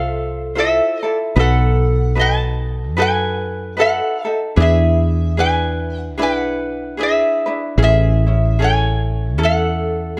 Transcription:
0.00 0.79 C2 medium
0.00 0.55 F4 medium
0.00 0.52 A4 medium
0.00 0.57 A4 medium
0.00 0.54 C5 medium
0.00 0.59 F5 medium
0.55 1.03 E4 medium
0.55 1.03 F4 medium
0.55 1.02 A4 medium
0.55 1.17 A4 medium
0.55 1.03 C5 medium
0.59 1.03 E5 medium
1.03 1.36 E4 soft
1.03 1.36 F4 soft
1.03 1.35 A4 medium
1.03 1.17 D5 medium
1.36 2.96 B1 medium
1.36 2.15 D#4 medium
1.36 2.15 F#4 medium
1.36 2.16 A4 medium
1.36 2.14 A4 medium
1.36 2.15 B4 medium
1.40 2.20 F#5 medium
2.15 2.96 D#4 medium
2.15 2.96 F#4 medium
2.15 2.97 A4 medium
2.15 2.96 B4 medium
2.19 2.94 D#5 medium
2.19 3.01 A5 medium
2.96 4.00 F#2 medium
2.96 3.76 D#4 medium
2.96 3.77 F#4 medium
2.96 3.77 A4 medium
2.96 3.76 B4 medium
3.00 3.74 B4 medium
3.00 3.81 G#5 medium
3.77 4.24 D#4 medium
3.77 4.24 F#4 medium
3.77 4.24 A4 medium
3.77 4.38 A4 medium
3.77 4.24 B4 medium
3.81 4.25 F#5 medium
4.25 4.56 D#4 soft
4.25 4.57 F#4 soft
4.25 4.57 A4 medium
4.25 4.39 E5 medium
4.56 6.18 E2 medium
4.56 5.37 D4 medium
4.56 5.38 E4 medium
4.56 5.37 G#4 medium
4.56 5.35 G#4 medium
4.56 5.37 B4 medium
4.62 5.40 E5 medium
5.37 6.17 D4 medium
5.37 6.19 E4 medium
5.37 6.17 G#4 medium
5.37 6.18 B4 medium
5.37 6.14 B4 medium
5.37 5.99 G#5 medium
5.99 6.21 F#5 medium
6.18 7.22 B1 medium
6.18 6.97 D4 medium
6.18 6.98 E4 medium
6.18 6.97 G#4 medium
6.18 6.98 B4 medium
6.22 6.96 B4 medium
6.22 6.96 F#5 medium
6.97 7.46 D4 medium
6.97 7.46 E4 medium
6.97 7.45 G#4 soft
6.97 7.59 G#4 medium
6.97 7.45 B4 medium
7.03 7.60 E5 medium
7.46 7.78 D4 soft
7.46 7.78 E4 soft
7.46 7.78 B4 medium
7.78 9.39 A1 medium
7.78 8.26 C#4 medium
7.78 8.25 E4 medium
7.78 8.25 G#4 medium
7.83 8.56 G#4 medium
7.83 8.63 E5 medium
8.27 8.58 C#4 soft
8.27 8.59 E4 soft
8.59 9.37 C#4 medium
8.59 9.37 E4 medium
8.59 9.38 G#4 medium
8.59 9.39 A4 medium
8.59 9.36 C#5 medium
8.64 9.44 G#5 medium
9.38 10.20 E2 medium
9.38 10.17 C#4 medium
9.38 10.17 E4 medium
9.38 10.17 A4 medium
9.43 10.17 A4 medium
9.43 10.20 F#5 medium

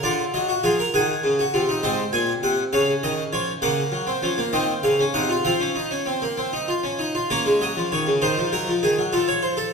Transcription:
0.03 0.22 D3 medium
0.03 0.48 F4 medium
0.03 0.22 D5 medium
0.34 0.53 F#3 medium
0.34 0.53 D#5 medium
0.49 0.64 F#4 medium
0.64 0.82 F3 medium
0.64 0.79 G#4 medium
0.64 0.83 F5 medium
0.79 0.94 A#4 medium
0.94 1.13 D#3 medium
0.94 1.38 G#4 medium
0.94 1.81 F#5 medium
1.24 1.42 C#3 medium
1.39 1.54 F#4 medium
1.54 1.72 C3 medium
1.54 1.68 F4 medium
1.69 1.83 D#4 medium
1.83 2.02 G#2 medium
1.83 2.70 C4 medium
1.83 2.02 D#5 loud
2.13 2.32 A#2 medium
2.13 2.32 G#5 medium
2.43 2.62 C3 medium
2.43 2.62 F#5 medium
2.73 2.91 C#3 medium
2.73 3.60 C#4 medium
2.73 2.91 F5 medium
3.03 3.22 D#3 medium
3.03 3.22 D#5 medium
3.33 3.51 F3 medium
3.33 3.51 C#5 medium
3.62 3.81 C#3 loud
3.62 4.06 A#3 medium
3.62 4.50 F#5 medium
3.92 4.11 F#3 medium
4.07 4.22 C4 medium
4.22 4.42 F3 medium
4.22 4.37 C#4 medium
4.38 4.52 A#3 medium
4.53 4.72 D#3 medium
4.53 4.97 C4 medium
4.53 4.72 D#5 medium
4.83 5.02 C#3 medium
4.83 5.02 F5 medium
4.99 5.14 C#4 medium
5.14 5.33 C3 medium
5.14 5.29 D#4 medium
5.14 5.33 F#5 medium
5.29 5.44 F4 medium
5.45 6.96 F3 medium
5.45 5.59 C4 medium
5.45 6.96 F5 medium
5.60 5.75 C#4 medium
5.76 5.90 D#4 medium
5.91 6.06 C#4 medium
6.06 6.21 C4 medium
6.22 6.37 A#3 medium
6.38 6.52 C4 medium
6.53 6.68 D#4 medium
6.68 6.83 F4 medium
6.83 6.99 C#4 medium
6.99 7.14 D#4 medium
7.15 7.30 F4 medium
7.30 7.45 A#3 medium
7.30 8.19 C#4 medium
7.30 7.50 A#4 loud
7.46 7.61 G#3 medium
7.61 7.76 F#3 medium
7.61 7.80 D#5 medium
7.77 7.91 F3 medium
7.92 8.07 D#3 medium
7.92 8.11 C#5 medium
8.07 8.21 C#3 medium
8.22 8.37 D#3 medium
8.22 9.73 D#4 medium
8.22 8.41 C5 loud
8.38 8.52 F3 medium
8.52 8.67 F#3 medium
8.52 8.71 A#4 loud
8.68 8.82 F3 medium
8.83 8.97 D#3 medium
8.83 9.01 G#4 medium
8.98 9.12 F#3 medium
9.13 9.73 F3 medium
9.13 9.27 A4 loud
9.28 9.42 C#5 medium
9.43 9.57 C5 medium
9.57 9.71 A4 loud

